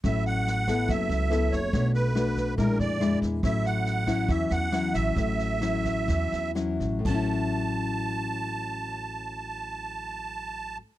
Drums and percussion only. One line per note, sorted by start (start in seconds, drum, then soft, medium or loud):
0.04 kick medium
0.04 cross-stick medium
0.04 snare soft
0.26 snare soft
0.47 snare soft
0.67 kick soft
0.67 cross-stick medium
0.67 snare soft
0.89 kick medium
0.89 snare soft
1.10 snare soft
1.31 cross-stick medium
1.31 snare soft
1.52 kick soft
1.52 snare soft
1.73 kick medium
1.73 snare soft
1.94 snare soft
2.16 cross-stick medium
2.16 snare soft
2.37 kick soft
2.37 snare soft
2.58 kick medium
2.58 snare soft
2.80 snare soft
3.01 cross-stick medium
3.01 snare soft
3.22 kick soft
3.22 snare soft
3.43 kick medium
3.43 cross-stick medium
3.43 snare soft
3.65 snare soft
3.86 snare soft
4.07 kick soft
4.07 cross-stick medium
4.07 snare soft
4.29 kick medium
4.29 snare soft
4.50 snare soft
4.72 cross-stick medium
4.72 snare soft
4.94 kick soft
4.94 snare soft
5.16 kick medium
5.16 snare soft
5.39 snare soft
5.61 cross-stick medium
5.61 snare soft
5.85 kick soft
5.85 snare soft
6.08 kick medium
6.08 snare soft
6.32 snare soft
6.56 cross-stick medium
6.56 snare soft
6.80 kick soft
6.80 snare soft
7.05 kick medium
7.05 crash medium